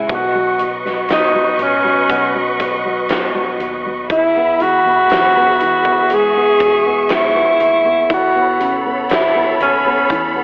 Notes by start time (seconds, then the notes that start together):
Already playing: C#3 G#3 E4
0.09 B1 B2 B4 D#5 C#6, kick, closed hi-hat
0.14 F#4
0.35 F#3
0.59 B2, closed hi-hat
0.85 F#3, snare
1.09 B2, snare, closed hi-hat
1.13 D#4
1.35 F#3
1.59 A1 B2 C#4, closed hi-hat
1.84 F#3
2.09 B1 B2, kick, closed hi-hat
2.34 F#3
2.60 B2, kick, closed hi-hat
2.85 F#3
3.09 B2, snare, closed hi-hat
3.35 F#3
3.59 D#2 B2, closed hi-hat
3.86 F#3
4.10 E2 E4 G#4 E5 B5, kick, closed hi-hat
4.36 B3
4.60 E3 F#4, closed hi-hat
4.85 E2 B3
5.09 E2 E3, snare, closed hi-hat
5.35 B3
5.60 E3, closed hi-hat
5.85 B3, kick
6.10 G#3 G#4 C#6, closed hi-hat
6.36 B3
6.60 E2 B2, kick, closed hi-hat
6.86 B3
7.09 snare, closed hi-hat
7.13 E4
7.35 B3
7.60 D#2, closed hi-hat
7.84 B3
8.10 E2 E4 A4 C#5 B5, kick, closed hi-hat
8.14 F#4
8.35 B3
8.59 C#3, closed hi-hat
8.85 B3
9.09 B2, snare, closed hi-hat
9.13 E4
9.35 B3
9.60 D#2 C#4, closed hi-hat
9.86 B3
10.10 E2 E3, kick, closed hi-hat
10.35 B3